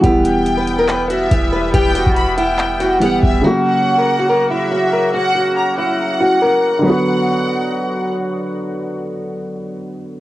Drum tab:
HH |x-x-x-x-x-x-x---|x-x-x-x-x-x-x---|----------------|----------------|
CP |--------x-------|--------x-------|----------------|----------------|
BD |o-----------o---|o--o----------o-|----------------|----------------|

HH |----------------|----------------|
CP |----------------|----------------|
BD |----------------|----------------|